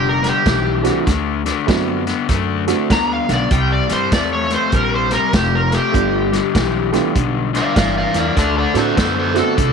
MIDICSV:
0, 0, Header, 1, 6, 480
1, 0, Start_track
1, 0, Tempo, 607903
1, 845, Time_signature, 4, 2, 24, 8
1, 7681, End_track
2, 0, Start_track
2, 0, Title_t, "Electric slide guitar"
2, 0, Program_c, 0, 29
2, 69, Note_on_c, 0, 70, 91
2, 211, Note_off_c, 0, 70, 0
2, 228, Note_on_c, 0, 67, 85
2, 839, Note_off_c, 0, 67, 0
2, 2309, Note_on_c, 0, 82, 101
2, 2456, Note_off_c, 0, 82, 0
2, 2472, Note_on_c, 0, 77, 83
2, 2617, Note_off_c, 0, 77, 0
2, 2630, Note_on_c, 0, 74, 104
2, 2777, Note_off_c, 0, 74, 0
2, 2779, Note_on_c, 0, 79, 96
2, 2931, Note_off_c, 0, 79, 0
2, 2938, Note_on_c, 0, 74, 96
2, 3091, Note_off_c, 0, 74, 0
2, 3101, Note_on_c, 0, 72, 92
2, 3253, Note_off_c, 0, 72, 0
2, 3257, Note_on_c, 0, 74, 79
2, 3410, Note_off_c, 0, 74, 0
2, 3419, Note_on_c, 0, 73, 98
2, 3572, Note_off_c, 0, 73, 0
2, 3589, Note_on_c, 0, 72, 83
2, 3737, Note_off_c, 0, 72, 0
2, 3748, Note_on_c, 0, 70, 95
2, 3896, Note_off_c, 0, 70, 0
2, 3903, Note_on_c, 0, 72, 89
2, 4054, Note_off_c, 0, 72, 0
2, 4060, Note_on_c, 0, 70, 92
2, 4212, Note_off_c, 0, 70, 0
2, 4224, Note_on_c, 0, 67, 85
2, 4374, Note_off_c, 0, 67, 0
2, 4384, Note_on_c, 0, 70, 93
2, 4534, Note_off_c, 0, 70, 0
2, 4538, Note_on_c, 0, 67, 103
2, 5465, Note_off_c, 0, 67, 0
2, 5977, Note_on_c, 0, 74, 90
2, 5981, Note_on_c, 0, 77, 92
2, 6126, Note_off_c, 0, 74, 0
2, 6130, Note_off_c, 0, 77, 0
2, 6135, Note_on_c, 0, 74, 86
2, 6142, Note_on_c, 0, 77, 91
2, 6281, Note_off_c, 0, 74, 0
2, 6291, Note_off_c, 0, 77, 0
2, 6303, Note_on_c, 0, 74, 87
2, 6306, Note_on_c, 0, 77, 97
2, 6444, Note_off_c, 0, 74, 0
2, 6452, Note_off_c, 0, 77, 0
2, 6461, Note_on_c, 0, 70, 69
2, 6467, Note_on_c, 0, 74, 82
2, 6603, Note_off_c, 0, 70, 0
2, 6612, Note_off_c, 0, 74, 0
2, 6616, Note_on_c, 0, 69, 87
2, 6622, Note_on_c, 0, 74, 90
2, 6760, Note_off_c, 0, 69, 0
2, 6769, Note_off_c, 0, 74, 0
2, 6775, Note_on_c, 0, 69, 77
2, 6779, Note_on_c, 0, 74, 103
2, 6919, Note_off_c, 0, 69, 0
2, 6927, Note_off_c, 0, 74, 0
2, 6938, Note_on_c, 0, 69, 81
2, 6941, Note_on_c, 0, 72, 90
2, 7080, Note_off_c, 0, 69, 0
2, 7088, Note_off_c, 0, 72, 0
2, 7091, Note_on_c, 0, 69, 72
2, 7098, Note_on_c, 0, 72, 78
2, 7236, Note_off_c, 0, 69, 0
2, 7246, Note_off_c, 0, 72, 0
2, 7257, Note_on_c, 0, 69, 91
2, 7264, Note_on_c, 0, 72, 97
2, 7399, Note_off_c, 0, 69, 0
2, 7408, Note_off_c, 0, 72, 0
2, 7416, Note_on_c, 0, 69, 89
2, 7681, Note_off_c, 0, 69, 0
2, 7681, End_track
3, 0, Start_track
3, 0, Title_t, "Grand piano"
3, 0, Program_c, 1, 0
3, 655, Note_on_c, 1, 57, 71
3, 655, Note_on_c, 1, 60, 67
3, 657, Note_on_c, 1, 62, 68
3, 662, Note_on_c, 1, 64, 65
3, 665, Note_on_c, 1, 66, 83
3, 821, Note_off_c, 1, 57, 0
3, 821, Note_off_c, 1, 60, 0
3, 822, Note_off_c, 1, 62, 0
3, 824, Note_off_c, 1, 64, 0
3, 826, Note_off_c, 1, 66, 0
3, 1312, Note_on_c, 1, 57, 69
3, 1312, Note_on_c, 1, 60, 66
3, 1317, Note_on_c, 1, 62, 68
3, 1321, Note_on_c, 1, 64, 68
3, 1324, Note_on_c, 1, 66, 75
3, 1593, Note_off_c, 1, 60, 0
3, 1594, Note_off_c, 1, 57, 0
3, 1596, Note_off_c, 1, 62, 0
3, 1598, Note_off_c, 1, 64, 0
3, 1599, Note_off_c, 1, 66, 0
3, 2107, Note_on_c, 1, 57, 74
3, 2110, Note_on_c, 1, 60, 63
3, 2112, Note_on_c, 1, 62, 68
3, 2114, Note_on_c, 1, 64, 58
3, 2117, Note_on_c, 1, 66, 73
3, 2270, Note_off_c, 1, 57, 0
3, 2271, Note_off_c, 1, 60, 0
3, 2272, Note_off_c, 1, 62, 0
3, 2273, Note_off_c, 1, 64, 0
3, 2275, Note_off_c, 1, 66, 0
3, 4676, Note_on_c, 1, 57, 62
3, 4683, Note_on_c, 1, 59, 61
3, 4685, Note_on_c, 1, 62, 57
3, 4685, Note_on_c, 1, 65, 59
3, 4690, Note_on_c, 1, 67, 78
3, 4957, Note_off_c, 1, 57, 0
3, 4961, Note_off_c, 1, 59, 0
3, 4962, Note_off_c, 1, 62, 0
3, 4962, Note_off_c, 1, 65, 0
3, 4964, Note_off_c, 1, 67, 0
3, 5468, Note_on_c, 1, 57, 82
3, 5468, Note_on_c, 1, 59, 65
3, 5470, Note_on_c, 1, 62, 72
3, 5472, Note_on_c, 1, 65, 73
3, 5478, Note_on_c, 1, 67, 82
3, 5630, Note_off_c, 1, 57, 0
3, 5630, Note_off_c, 1, 59, 0
3, 5631, Note_off_c, 1, 62, 0
3, 5632, Note_off_c, 1, 65, 0
3, 5635, Note_off_c, 1, 67, 0
3, 6901, Note_on_c, 1, 57, 64
3, 6903, Note_on_c, 1, 60, 62
3, 6903, Note_on_c, 1, 62, 59
3, 6908, Note_on_c, 1, 64, 63
3, 6910, Note_on_c, 1, 66, 76
3, 7063, Note_off_c, 1, 57, 0
3, 7064, Note_off_c, 1, 60, 0
3, 7064, Note_off_c, 1, 62, 0
3, 7067, Note_off_c, 1, 64, 0
3, 7068, Note_off_c, 1, 66, 0
3, 7375, Note_on_c, 1, 57, 87
3, 7377, Note_on_c, 1, 60, 75
3, 7380, Note_on_c, 1, 62, 68
3, 7382, Note_on_c, 1, 64, 77
3, 7388, Note_on_c, 1, 66, 87
3, 7538, Note_off_c, 1, 57, 0
3, 7540, Note_off_c, 1, 60, 0
3, 7541, Note_off_c, 1, 62, 0
3, 7542, Note_off_c, 1, 64, 0
3, 7545, Note_off_c, 1, 66, 0
3, 7681, End_track
4, 0, Start_track
4, 0, Title_t, "Overdriven electric guitar"
4, 0, Program_c, 2, 29
4, 0, Note_on_c, 2, 43, 78
4, 0, Note_on_c, 2, 50, 92
4, 150, Note_off_c, 2, 43, 0
4, 152, Note_off_c, 2, 50, 0
4, 177, Note_on_c, 2, 43, 68
4, 181, Note_on_c, 2, 50, 72
4, 341, Note_off_c, 2, 43, 0
4, 343, Note_off_c, 2, 50, 0
4, 355, Note_on_c, 2, 43, 72
4, 360, Note_on_c, 2, 52, 84
4, 633, Note_off_c, 2, 43, 0
4, 635, Note_off_c, 2, 52, 0
4, 661, Note_on_c, 2, 43, 65
4, 664, Note_on_c, 2, 52, 82
4, 824, Note_off_c, 2, 43, 0
4, 826, Note_off_c, 2, 52, 0
4, 839, Note_on_c, 2, 50, 78
4, 842, Note_on_c, 2, 57, 82
4, 1116, Note_off_c, 2, 50, 0
4, 1117, Note_off_c, 2, 57, 0
4, 1150, Note_on_c, 2, 50, 78
4, 1155, Note_on_c, 2, 57, 79
4, 1309, Note_off_c, 2, 50, 0
4, 1312, Note_off_c, 2, 57, 0
4, 1329, Note_on_c, 2, 50, 75
4, 1332, Note_on_c, 2, 59, 85
4, 1602, Note_off_c, 2, 50, 0
4, 1604, Note_off_c, 2, 59, 0
4, 1633, Note_on_c, 2, 50, 60
4, 1637, Note_on_c, 2, 59, 75
4, 1792, Note_off_c, 2, 50, 0
4, 1794, Note_off_c, 2, 59, 0
4, 1806, Note_on_c, 2, 50, 81
4, 1810, Note_on_c, 2, 57, 93
4, 2082, Note_off_c, 2, 50, 0
4, 2083, Note_off_c, 2, 57, 0
4, 2114, Note_on_c, 2, 50, 67
4, 2116, Note_on_c, 2, 57, 85
4, 2273, Note_off_c, 2, 50, 0
4, 2274, Note_off_c, 2, 57, 0
4, 2290, Note_on_c, 2, 50, 81
4, 2294, Note_on_c, 2, 59, 83
4, 2564, Note_off_c, 2, 50, 0
4, 2566, Note_off_c, 2, 59, 0
4, 2598, Note_on_c, 2, 50, 75
4, 2599, Note_on_c, 2, 59, 80
4, 2756, Note_off_c, 2, 50, 0
4, 2757, Note_off_c, 2, 59, 0
4, 2774, Note_on_c, 2, 48, 86
4, 2777, Note_on_c, 2, 55, 87
4, 3046, Note_off_c, 2, 48, 0
4, 3048, Note_off_c, 2, 55, 0
4, 3073, Note_on_c, 2, 48, 69
4, 3077, Note_on_c, 2, 55, 73
4, 3234, Note_off_c, 2, 48, 0
4, 3236, Note_off_c, 2, 55, 0
4, 3253, Note_on_c, 2, 48, 79
4, 3255, Note_on_c, 2, 57, 99
4, 3526, Note_off_c, 2, 48, 0
4, 3528, Note_off_c, 2, 57, 0
4, 3554, Note_on_c, 2, 48, 64
4, 3558, Note_on_c, 2, 57, 67
4, 3715, Note_off_c, 2, 48, 0
4, 3716, Note_off_c, 2, 57, 0
4, 3734, Note_on_c, 2, 48, 77
4, 3736, Note_on_c, 2, 55, 100
4, 4007, Note_off_c, 2, 48, 0
4, 4008, Note_off_c, 2, 55, 0
4, 4033, Note_on_c, 2, 48, 68
4, 4038, Note_on_c, 2, 55, 85
4, 4194, Note_off_c, 2, 48, 0
4, 4196, Note_off_c, 2, 55, 0
4, 4209, Note_on_c, 2, 48, 74
4, 4216, Note_on_c, 2, 57, 76
4, 4484, Note_off_c, 2, 48, 0
4, 4487, Note_off_c, 2, 57, 0
4, 4514, Note_on_c, 2, 48, 71
4, 4518, Note_on_c, 2, 57, 84
4, 4674, Note_off_c, 2, 48, 0
4, 4676, Note_off_c, 2, 57, 0
4, 4690, Note_on_c, 2, 43, 77
4, 4694, Note_on_c, 2, 50, 102
4, 4964, Note_off_c, 2, 43, 0
4, 4966, Note_off_c, 2, 50, 0
4, 4993, Note_on_c, 2, 43, 74
4, 4997, Note_on_c, 2, 50, 83
4, 5153, Note_off_c, 2, 43, 0
4, 5155, Note_off_c, 2, 50, 0
4, 5170, Note_on_c, 2, 43, 86
4, 5173, Note_on_c, 2, 52, 96
4, 5444, Note_off_c, 2, 43, 0
4, 5445, Note_off_c, 2, 52, 0
4, 5468, Note_on_c, 2, 43, 73
4, 5471, Note_on_c, 2, 52, 73
4, 5630, Note_off_c, 2, 43, 0
4, 5632, Note_off_c, 2, 52, 0
4, 5644, Note_on_c, 2, 43, 81
4, 5647, Note_on_c, 2, 50, 107
4, 5920, Note_off_c, 2, 43, 0
4, 5921, Note_off_c, 2, 50, 0
4, 5947, Note_on_c, 2, 43, 73
4, 5952, Note_on_c, 2, 50, 90
4, 6109, Note_off_c, 2, 43, 0
4, 6111, Note_off_c, 2, 50, 0
4, 6127, Note_on_c, 2, 43, 84
4, 6131, Note_on_c, 2, 52, 82
4, 6400, Note_off_c, 2, 43, 0
4, 6402, Note_off_c, 2, 52, 0
4, 6427, Note_on_c, 2, 43, 72
4, 6432, Note_on_c, 2, 52, 86
4, 6588, Note_off_c, 2, 43, 0
4, 6590, Note_off_c, 2, 52, 0
4, 6604, Note_on_c, 2, 50, 89
4, 6606, Note_on_c, 2, 57, 98
4, 6877, Note_off_c, 2, 50, 0
4, 6878, Note_off_c, 2, 57, 0
4, 6901, Note_on_c, 2, 50, 78
4, 6905, Note_on_c, 2, 57, 91
4, 7063, Note_off_c, 2, 50, 0
4, 7065, Note_off_c, 2, 57, 0
4, 7080, Note_on_c, 2, 50, 87
4, 7084, Note_on_c, 2, 59, 92
4, 7353, Note_off_c, 2, 50, 0
4, 7355, Note_off_c, 2, 59, 0
4, 7383, Note_on_c, 2, 50, 66
4, 7386, Note_on_c, 2, 59, 81
4, 7542, Note_off_c, 2, 50, 0
4, 7544, Note_off_c, 2, 59, 0
4, 7555, Note_on_c, 2, 50, 90
4, 7559, Note_on_c, 2, 57, 98
4, 7681, Note_off_c, 2, 50, 0
4, 7681, Note_off_c, 2, 57, 0
4, 7681, End_track
5, 0, Start_track
5, 0, Title_t, "Upright bass"
5, 0, Program_c, 3, 32
5, 0, Note_on_c, 3, 29, 89
5, 214, Note_off_c, 3, 29, 0
5, 362, Note_on_c, 3, 35, 96
5, 697, Note_off_c, 3, 35, 0
5, 843, Note_on_c, 3, 38, 106
5, 1179, Note_off_c, 3, 38, 0
5, 1328, Note_on_c, 3, 42, 73
5, 1663, Note_off_c, 3, 42, 0
5, 1810, Note_on_c, 3, 42, 86
5, 2145, Note_off_c, 3, 42, 0
5, 2292, Note_on_c, 3, 38, 90
5, 2503, Note_off_c, 3, 38, 0
5, 2596, Note_on_c, 3, 35, 85
5, 2719, Note_off_c, 3, 35, 0
5, 2773, Note_on_c, 3, 36, 102
5, 2984, Note_off_c, 3, 36, 0
5, 3078, Note_on_c, 3, 43, 79
5, 3200, Note_off_c, 3, 43, 0
5, 3254, Note_on_c, 3, 40, 75
5, 3588, Note_off_c, 3, 40, 0
5, 3732, Note_on_c, 3, 34, 86
5, 4067, Note_off_c, 3, 34, 0
5, 4211, Note_on_c, 3, 29, 94
5, 4545, Note_off_c, 3, 29, 0
5, 4692, Note_on_c, 3, 31, 98
5, 5026, Note_off_c, 3, 31, 0
5, 5171, Note_on_c, 3, 35, 74
5, 5504, Note_off_c, 3, 35, 0
5, 5650, Note_on_c, 3, 35, 83
5, 5983, Note_off_c, 3, 35, 0
5, 6128, Note_on_c, 3, 31, 96
5, 6338, Note_off_c, 3, 31, 0
5, 6430, Note_on_c, 3, 40, 87
5, 6553, Note_off_c, 3, 40, 0
5, 6609, Note_on_c, 3, 38, 99
5, 6818, Note_off_c, 3, 38, 0
5, 6905, Note_on_c, 3, 45, 83
5, 7029, Note_off_c, 3, 45, 0
5, 7087, Note_on_c, 3, 42, 81
5, 7418, Note_off_c, 3, 42, 0
5, 7565, Note_on_c, 3, 36, 87
5, 7681, Note_off_c, 3, 36, 0
5, 7681, End_track
6, 0, Start_track
6, 0, Title_t, "Drums"
6, 188, Note_on_c, 9, 42, 53
6, 196, Note_on_c, 9, 38, 33
6, 267, Note_off_c, 9, 42, 0
6, 275, Note_off_c, 9, 38, 0
6, 361, Note_on_c, 9, 42, 70
6, 362, Note_on_c, 9, 36, 77
6, 369, Note_on_c, 9, 38, 92
6, 439, Note_off_c, 9, 42, 0
6, 441, Note_off_c, 9, 36, 0
6, 448, Note_off_c, 9, 38, 0
6, 667, Note_on_c, 9, 42, 61
6, 676, Note_on_c, 9, 38, 34
6, 746, Note_off_c, 9, 42, 0
6, 755, Note_off_c, 9, 38, 0
6, 843, Note_on_c, 9, 42, 79
6, 845, Note_on_c, 9, 36, 80
6, 852, Note_on_c, 9, 38, 31
6, 922, Note_off_c, 9, 42, 0
6, 924, Note_off_c, 9, 36, 0
6, 931, Note_off_c, 9, 38, 0
6, 1151, Note_on_c, 9, 42, 57
6, 1160, Note_on_c, 9, 38, 33
6, 1230, Note_off_c, 9, 42, 0
6, 1238, Note_off_c, 9, 38, 0
6, 1328, Note_on_c, 9, 36, 86
6, 1329, Note_on_c, 9, 42, 83
6, 1337, Note_on_c, 9, 38, 108
6, 1407, Note_off_c, 9, 36, 0
6, 1408, Note_off_c, 9, 42, 0
6, 1416, Note_off_c, 9, 38, 0
6, 1632, Note_on_c, 9, 42, 58
6, 1641, Note_on_c, 9, 38, 32
6, 1711, Note_off_c, 9, 42, 0
6, 1720, Note_off_c, 9, 38, 0
6, 1805, Note_on_c, 9, 42, 85
6, 1809, Note_on_c, 9, 36, 81
6, 1814, Note_on_c, 9, 38, 30
6, 1884, Note_off_c, 9, 42, 0
6, 1888, Note_off_c, 9, 36, 0
6, 1893, Note_off_c, 9, 38, 0
6, 2112, Note_on_c, 9, 42, 65
6, 2121, Note_on_c, 9, 38, 31
6, 2191, Note_off_c, 9, 42, 0
6, 2200, Note_off_c, 9, 38, 0
6, 2291, Note_on_c, 9, 36, 79
6, 2292, Note_on_c, 9, 42, 74
6, 2301, Note_on_c, 9, 38, 107
6, 2370, Note_off_c, 9, 36, 0
6, 2371, Note_off_c, 9, 42, 0
6, 2380, Note_off_c, 9, 38, 0
6, 2597, Note_on_c, 9, 42, 65
6, 2605, Note_on_c, 9, 38, 34
6, 2676, Note_off_c, 9, 42, 0
6, 2684, Note_off_c, 9, 38, 0
6, 2768, Note_on_c, 9, 42, 83
6, 2771, Note_on_c, 9, 36, 80
6, 2847, Note_off_c, 9, 42, 0
6, 2850, Note_off_c, 9, 36, 0
6, 3073, Note_on_c, 9, 42, 61
6, 3082, Note_on_c, 9, 38, 33
6, 3152, Note_off_c, 9, 42, 0
6, 3161, Note_off_c, 9, 38, 0
6, 3251, Note_on_c, 9, 42, 81
6, 3253, Note_on_c, 9, 36, 88
6, 3260, Note_on_c, 9, 38, 103
6, 3330, Note_off_c, 9, 42, 0
6, 3332, Note_off_c, 9, 36, 0
6, 3339, Note_off_c, 9, 38, 0
6, 3555, Note_on_c, 9, 42, 55
6, 3564, Note_on_c, 9, 38, 32
6, 3634, Note_off_c, 9, 42, 0
6, 3643, Note_off_c, 9, 38, 0
6, 3726, Note_on_c, 9, 42, 78
6, 3731, Note_on_c, 9, 36, 78
6, 3805, Note_off_c, 9, 42, 0
6, 3810, Note_off_c, 9, 36, 0
6, 4032, Note_on_c, 9, 42, 54
6, 4040, Note_on_c, 9, 38, 30
6, 4111, Note_off_c, 9, 42, 0
6, 4119, Note_off_c, 9, 38, 0
6, 4210, Note_on_c, 9, 42, 78
6, 4211, Note_on_c, 9, 36, 75
6, 4218, Note_on_c, 9, 38, 103
6, 4289, Note_off_c, 9, 42, 0
6, 4290, Note_off_c, 9, 36, 0
6, 4297, Note_off_c, 9, 38, 0
6, 4516, Note_on_c, 9, 42, 60
6, 4524, Note_on_c, 9, 38, 31
6, 4595, Note_off_c, 9, 42, 0
6, 4603, Note_off_c, 9, 38, 0
6, 4692, Note_on_c, 9, 36, 83
6, 4695, Note_on_c, 9, 42, 76
6, 4771, Note_off_c, 9, 36, 0
6, 4774, Note_off_c, 9, 42, 0
6, 5000, Note_on_c, 9, 42, 63
6, 5008, Note_on_c, 9, 38, 35
6, 5079, Note_off_c, 9, 42, 0
6, 5087, Note_off_c, 9, 38, 0
6, 5171, Note_on_c, 9, 36, 83
6, 5172, Note_on_c, 9, 42, 84
6, 5181, Note_on_c, 9, 38, 105
6, 5250, Note_off_c, 9, 36, 0
6, 5251, Note_off_c, 9, 42, 0
6, 5260, Note_off_c, 9, 38, 0
6, 5474, Note_on_c, 9, 42, 55
6, 5483, Note_on_c, 9, 38, 33
6, 5553, Note_off_c, 9, 42, 0
6, 5562, Note_off_c, 9, 38, 0
6, 5650, Note_on_c, 9, 36, 85
6, 5650, Note_on_c, 9, 42, 85
6, 5729, Note_off_c, 9, 36, 0
6, 5729, Note_off_c, 9, 42, 0
6, 5957, Note_on_c, 9, 42, 58
6, 5966, Note_on_c, 9, 38, 34
6, 6036, Note_off_c, 9, 42, 0
6, 6045, Note_off_c, 9, 38, 0
6, 6128, Note_on_c, 9, 42, 87
6, 6129, Note_on_c, 9, 36, 81
6, 6137, Note_on_c, 9, 38, 113
6, 6207, Note_off_c, 9, 42, 0
6, 6208, Note_off_c, 9, 36, 0
6, 6216, Note_off_c, 9, 38, 0
6, 6427, Note_on_c, 9, 42, 69
6, 6436, Note_on_c, 9, 38, 31
6, 6506, Note_off_c, 9, 42, 0
6, 6515, Note_off_c, 9, 38, 0
6, 6607, Note_on_c, 9, 36, 81
6, 6607, Note_on_c, 9, 42, 80
6, 6615, Note_on_c, 9, 38, 31
6, 6686, Note_off_c, 9, 36, 0
6, 6686, Note_off_c, 9, 42, 0
6, 6694, Note_off_c, 9, 38, 0
6, 6908, Note_on_c, 9, 42, 61
6, 6917, Note_on_c, 9, 38, 38
6, 6987, Note_off_c, 9, 42, 0
6, 6996, Note_off_c, 9, 38, 0
6, 7084, Note_on_c, 9, 42, 91
6, 7086, Note_on_c, 9, 36, 82
6, 7093, Note_on_c, 9, 38, 102
6, 7163, Note_off_c, 9, 42, 0
6, 7165, Note_off_c, 9, 36, 0
6, 7172, Note_off_c, 9, 38, 0
6, 7386, Note_on_c, 9, 42, 55
6, 7395, Note_on_c, 9, 38, 33
6, 7465, Note_off_c, 9, 42, 0
6, 7474, Note_off_c, 9, 38, 0
6, 7564, Note_on_c, 9, 36, 86
6, 7565, Note_on_c, 9, 42, 83
6, 7643, Note_off_c, 9, 36, 0
6, 7644, Note_off_c, 9, 42, 0
6, 7681, End_track
0, 0, End_of_file